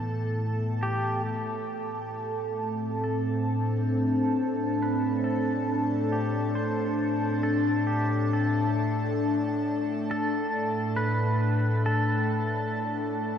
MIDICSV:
0, 0, Header, 1, 3, 480
1, 0, Start_track
1, 0, Key_signature, 0, "minor"
1, 0, Tempo, 882353
1, 689, Time_signature, 4, 2, 24, 8
1, 7280, End_track
2, 0, Start_track
2, 0, Title_t, "Pedal steel guitar"
2, 0, Program_c, 0, 26
2, 0, Note_on_c, 0, 69, 70
2, 191, Note_off_c, 0, 69, 0
2, 450, Note_on_c, 0, 67, 80
2, 672, Note_off_c, 0, 67, 0
2, 688, Note_on_c, 0, 69, 100
2, 1646, Note_off_c, 0, 69, 0
2, 1652, Note_on_c, 0, 69, 81
2, 2349, Note_off_c, 0, 69, 0
2, 2625, Note_on_c, 0, 71, 87
2, 2849, Note_off_c, 0, 71, 0
2, 2851, Note_on_c, 0, 69, 85
2, 3331, Note_on_c, 0, 67, 77
2, 3344, Note_off_c, 0, 69, 0
2, 3553, Note_off_c, 0, 67, 0
2, 3565, Note_on_c, 0, 72, 97
2, 4041, Note_off_c, 0, 72, 0
2, 4043, Note_on_c, 0, 69, 91
2, 4281, Note_on_c, 0, 67, 73
2, 4293, Note_off_c, 0, 69, 0
2, 4532, Note_off_c, 0, 67, 0
2, 4533, Note_on_c, 0, 69, 80
2, 5229, Note_off_c, 0, 69, 0
2, 5500, Note_on_c, 0, 69, 99
2, 5963, Note_off_c, 0, 69, 0
2, 5965, Note_on_c, 0, 71, 109
2, 6449, Note_off_c, 0, 71, 0
2, 6451, Note_on_c, 0, 69, 86
2, 7280, Note_off_c, 0, 69, 0
2, 7280, End_track
3, 0, Start_track
3, 0, Title_t, "Ambient pad"
3, 0, Program_c, 1, 92
3, 0, Note_on_c, 1, 45, 69
3, 0, Note_on_c, 1, 52, 66
3, 0, Note_on_c, 1, 59, 58
3, 0, Note_on_c, 1, 69, 64
3, 0, Note_on_c, 1, 81, 69
3, 685, Note_off_c, 1, 52, 0
3, 690, Note_off_c, 1, 59, 0
3, 935, Note_on_c, 1, 57, 84
3, 1323, Note_on_c, 1, 60, 75
3, 1544, Note_on_c, 1, 62, 75
3, 4529, Note_off_c, 1, 60, 0
3, 7280, Note_off_c, 1, 45, 0
3, 7280, Note_off_c, 1, 57, 0
3, 7280, Note_off_c, 1, 62, 0
3, 7280, Note_off_c, 1, 69, 0
3, 7280, Note_off_c, 1, 81, 0
3, 7280, End_track
0, 0, End_of_file